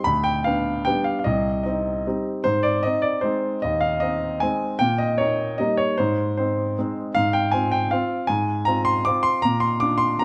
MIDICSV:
0, 0, Header, 1, 2, 480
1, 0, Start_track
1, 0, Tempo, 394737
1, 66, Time_signature, 3, 2, 24, 8
1, 7267, Tempo, 383632
1, 12607, End_track
2, 0, Start_track
2, 0, Title_t, "Grand piano"
2, 0, Program_c, 0, 0
2, 52, Note_on_c, 0, 83, 96
2, 79, Note_on_c, 0, 38, 60
2, 256, Control_c, 0, 64, 127
2, 287, Note_on_c, 0, 79, 90
2, 294, Note_off_c, 0, 83, 0
2, 533, Note_off_c, 0, 38, 0
2, 534, Note_off_c, 0, 79, 0
2, 539, Note_on_c, 0, 77, 83
2, 562, Note_on_c, 0, 59, 44
2, 572, Note_on_c, 0, 62, 49
2, 999, Note_off_c, 0, 59, 0
2, 1004, Note_off_c, 0, 62, 0
2, 1031, Note_on_c, 0, 79, 91
2, 1036, Note_off_c, 0, 77, 0
2, 1050, Control_c, 0, 64, 0
2, 1053, Note_on_c, 0, 55, 45
2, 1058, Note_on_c, 0, 59, 48
2, 1063, Note_on_c, 0, 62, 49
2, 1268, Note_on_c, 0, 77, 78
2, 1277, Note_off_c, 0, 79, 0
2, 1432, Note_off_c, 0, 77, 0
2, 1450, Note_on_c, 0, 77, 65
2, 1478, Note_off_c, 0, 55, 0
2, 1481, Note_off_c, 0, 59, 0
2, 1484, Note_off_c, 0, 62, 0
2, 1511, Note_on_c, 0, 75, 86
2, 1521, Note_off_c, 0, 77, 0
2, 1533, Note_on_c, 0, 36, 63
2, 1760, Control_c, 0, 64, 127
2, 1968, Note_off_c, 0, 75, 0
2, 1986, Note_on_c, 0, 75, 72
2, 1994, Note_off_c, 0, 36, 0
2, 2015, Note_on_c, 0, 60, 43
2, 2015, Note_on_c, 0, 63, 46
2, 2451, Note_off_c, 0, 60, 0
2, 2451, Note_off_c, 0, 63, 0
2, 2502, Control_c, 0, 64, 0
2, 2515, Note_on_c, 0, 60, 43
2, 2518, Note_on_c, 0, 55, 41
2, 2526, Note_on_c, 0, 63, 50
2, 2732, Note_off_c, 0, 75, 0
2, 2941, Note_off_c, 0, 60, 0
2, 2942, Note_off_c, 0, 55, 0
2, 2947, Note_off_c, 0, 63, 0
2, 2964, Note_on_c, 0, 72, 97
2, 2983, Note_on_c, 0, 44, 61
2, 3178, Control_c, 0, 64, 127
2, 3196, Note_on_c, 0, 74, 86
2, 3205, Note_off_c, 0, 72, 0
2, 3438, Note_off_c, 0, 44, 0
2, 3438, Note_on_c, 0, 75, 93
2, 3441, Note_off_c, 0, 74, 0
2, 3462, Control_c, 0, 64, 0
2, 3469, Note_on_c, 0, 60, 43
2, 3477, Note_on_c, 0, 63, 46
2, 3671, Note_on_c, 0, 74, 82
2, 3684, Note_off_c, 0, 75, 0
2, 3894, Note_off_c, 0, 60, 0
2, 3899, Note_off_c, 0, 63, 0
2, 3906, Note_on_c, 0, 72, 79
2, 3922, Note_off_c, 0, 74, 0
2, 3935, Note_on_c, 0, 56, 45
2, 3940, Note_on_c, 0, 60, 44
2, 3942, Note_on_c, 0, 63, 53
2, 4366, Note_off_c, 0, 56, 0
2, 4369, Note_off_c, 0, 60, 0
2, 4370, Note_off_c, 0, 63, 0
2, 4399, Note_off_c, 0, 72, 0
2, 4403, Note_on_c, 0, 75, 90
2, 4426, Note_on_c, 0, 39, 59
2, 4607, Control_c, 0, 64, 127
2, 4628, Note_on_c, 0, 77, 88
2, 4641, Note_off_c, 0, 75, 0
2, 4865, Note_on_c, 0, 75, 87
2, 4872, Note_off_c, 0, 77, 0
2, 4874, Note_off_c, 0, 39, 0
2, 4893, Note_on_c, 0, 60, 42
2, 4895, Note_on_c, 0, 63, 49
2, 5321, Note_off_c, 0, 60, 0
2, 5323, Note_off_c, 0, 63, 0
2, 5354, Note_on_c, 0, 80, 93
2, 5355, Note_off_c, 0, 75, 0
2, 5373, Control_c, 0, 64, 0
2, 5381, Note_on_c, 0, 56, 43
2, 5383, Note_on_c, 0, 60, 44
2, 5383, Note_on_c, 0, 63, 46
2, 5797, Note_off_c, 0, 56, 0
2, 5798, Note_off_c, 0, 60, 0
2, 5798, Note_off_c, 0, 63, 0
2, 5823, Note_on_c, 0, 79, 100
2, 5830, Note_off_c, 0, 80, 0
2, 5849, Note_on_c, 0, 46, 57
2, 6035, Control_c, 0, 64, 127
2, 6060, Note_off_c, 0, 79, 0
2, 6060, Note_on_c, 0, 75, 85
2, 6297, Note_on_c, 0, 73, 83
2, 6298, Note_off_c, 0, 46, 0
2, 6302, Note_off_c, 0, 75, 0
2, 6325, Note_on_c, 0, 58, 42
2, 6328, Note_on_c, 0, 63, 48
2, 6751, Note_off_c, 0, 58, 0
2, 6753, Note_off_c, 0, 63, 0
2, 6784, Note_off_c, 0, 73, 0
2, 6785, Note_on_c, 0, 75, 82
2, 6800, Control_c, 0, 64, 0
2, 6803, Note_on_c, 0, 55, 48
2, 6812, Note_on_c, 0, 58, 44
2, 6818, Note_on_c, 0, 63, 50
2, 7022, Note_on_c, 0, 73, 88
2, 7030, Note_off_c, 0, 75, 0
2, 7229, Note_off_c, 0, 55, 0
2, 7234, Note_off_c, 0, 58, 0
2, 7237, Note_off_c, 0, 63, 0
2, 7264, Note_off_c, 0, 73, 0
2, 7266, Note_on_c, 0, 72, 88
2, 7295, Note_on_c, 0, 44, 64
2, 7450, Control_c, 0, 64, 127
2, 7746, Note_off_c, 0, 72, 0
2, 7754, Note_off_c, 0, 44, 0
2, 7765, Note_on_c, 0, 72, 77
2, 7784, Note_on_c, 0, 60, 43
2, 7792, Note_on_c, 0, 63, 45
2, 8210, Note_off_c, 0, 60, 0
2, 8215, Note_off_c, 0, 63, 0
2, 8258, Control_c, 0, 64, 0
2, 8281, Note_on_c, 0, 56, 49
2, 8283, Note_on_c, 0, 60, 46
2, 8294, Note_on_c, 0, 63, 47
2, 8489, Note_off_c, 0, 72, 0
2, 8691, Note_off_c, 0, 56, 0
2, 8692, Note_off_c, 0, 60, 0
2, 8698, Note_off_c, 0, 63, 0
2, 8730, Note_on_c, 0, 77, 102
2, 8752, Note_on_c, 0, 44, 64
2, 8920, Control_c, 0, 64, 127
2, 8956, Note_off_c, 0, 77, 0
2, 8965, Note_on_c, 0, 79, 88
2, 9192, Note_off_c, 0, 44, 0
2, 9193, Note_on_c, 0, 80, 89
2, 9196, Note_off_c, 0, 79, 0
2, 9219, Note_on_c, 0, 60, 46
2, 9224, Note_on_c, 0, 65, 47
2, 9435, Note_off_c, 0, 80, 0
2, 9443, Note_on_c, 0, 79, 88
2, 9650, Note_off_c, 0, 60, 0
2, 9653, Note_off_c, 0, 65, 0
2, 9686, Note_on_c, 0, 77, 79
2, 9687, Note_off_c, 0, 79, 0
2, 9692, Control_c, 0, 64, 0
2, 9712, Note_on_c, 0, 65, 50
2, 9713, Note_on_c, 0, 60, 45
2, 10132, Note_off_c, 0, 60, 0
2, 10132, Note_off_c, 0, 65, 0
2, 10141, Note_on_c, 0, 80, 95
2, 10165, Note_off_c, 0, 77, 0
2, 10171, Note_on_c, 0, 44, 65
2, 10372, Control_c, 0, 64, 127
2, 10615, Note_on_c, 0, 82, 91
2, 10619, Note_off_c, 0, 80, 0
2, 10620, Note_off_c, 0, 44, 0
2, 10645, Note_on_c, 0, 60, 40
2, 10651, Note_on_c, 0, 65, 52
2, 10860, Note_on_c, 0, 84, 95
2, 10862, Note_off_c, 0, 82, 0
2, 11073, Note_off_c, 0, 60, 0
2, 11076, Note_off_c, 0, 65, 0
2, 11108, Note_off_c, 0, 84, 0
2, 11111, Note_on_c, 0, 86, 100
2, 11127, Control_c, 0, 64, 0
2, 11136, Note_on_c, 0, 60, 45
2, 11139, Note_on_c, 0, 65, 49
2, 11336, Note_on_c, 0, 84, 95
2, 11352, Note_off_c, 0, 86, 0
2, 11550, Note_off_c, 0, 60, 0
2, 11552, Note_off_c, 0, 65, 0
2, 11576, Note_off_c, 0, 84, 0
2, 11578, Note_on_c, 0, 82, 96
2, 11610, Note_on_c, 0, 46, 56
2, 11788, Control_c, 0, 64, 127
2, 11805, Note_on_c, 0, 84, 87
2, 11813, Note_off_c, 0, 82, 0
2, 12051, Note_off_c, 0, 84, 0
2, 12053, Note_on_c, 0, 86, 92
2, 12055, Note_off_c, 0, 46, 0
2, 12078, Note_on_c, 0, 62, 42
2, 12084, Note_on_c, 0, 65, 45
2, 12272, Note_on_c, 0, 84, 93
2, 12300, Note_off_c, 0, 86, 0
2, 12511, Note_off_c, 0, 62, 0
2, 12515, Note_off_c, 0, 65, 0
2, 12534, Note_off_c, 0, 84, 0
2, 12544, Note_on_c, 0, 82, 92
2, 12558, Control_c, 0, 64, 0
2, 12568, Note_on_c, 0, 58, 43
2, 12607, Note_off_c, 0, 58, 0
2, 12607, Note_off_c, 0, 82, 0
2, 12607, End_track
0, 0, End_of_file